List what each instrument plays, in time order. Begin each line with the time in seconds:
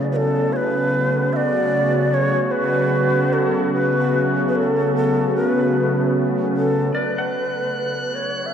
Already playing: analog synth pad C#3 F#3 A3 B3 E4
0.12 shakuhachi A4 B4
0.53 shakuhachi B4 C#5
0.57 analog synth pad F#4
1.33 shakuhachi D5 E5
2.14 shakuhachi C#5
2.51 shakuhachi B4
3.33 shakuhachi A4
3.74 shakuhachi B4
4.49 shakuhachi B4
4.56 shakuhachi A4
4.96 shakuhachi A4
5.36 shakuhachi A#4
5.49 shakuhachi B4
6.57 shakuhachi A4
6.94 shakuhachi B4, clean electric guitar D5, synth texture F#6
7.18 clean electric guitar F#5
8.15 shakuhachi C#5
8.44 analog synth pad E4, shakuhachi E5